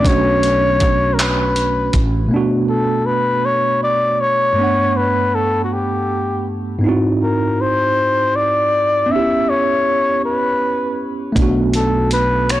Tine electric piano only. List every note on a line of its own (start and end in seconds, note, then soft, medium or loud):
0.00 2.24 A3 medium
0.00 2.26 C#4 medium
0.06 2.27 D4 medium
0.06 2.29 F#4 medium
2.26 4.51 B2 medium
2.26 4.52 A3 medium
2.31 4.53 B3 medium
2.31 4.55 D4 medium
2.36 4.56 F#4 medium
4.53 6.77 G2 medium
4.53 6.79 A3 medium
4.58 6.80 B3 medium
4.58 6.81 D4 medium
4.63 6.83 F#5 medium
6.79 9.03 G#2 medium
6.79 6.89 B3 medium
6.84 9.06 D#4 medium
6.84 9.07 E4 medium
6.88 9.08 C4 medium
6.88 9.09 F#4 medium
9.06 11.31 B3 medium
9.06 11.32 C#4 medium
9.13 9.18 D#4 soft
9.13 11.35 G4 medium
9.19 11.37 E4 medium
11.32 12.60 A3 medium
11.32 12.60 B3 medium
11.39 12.60 D4 medium
11.39 12.60 F#4 medium